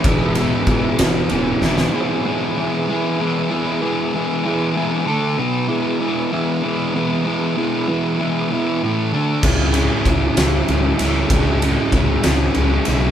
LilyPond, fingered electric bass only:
\new Staff \with { instrumentName = "Fingered electric bass" } { \clef bass \time 6/8 \key e \major \tempo 4. = 64 e,,4 e,,8 e,,8 e,,8 e,,8 | r2. | r2. | r2. |
r2. | cis,4 cis,8 cis,8 cis,8 cis,8 | cis,4 cis,8 cis,8 cis,8 b,,8 | }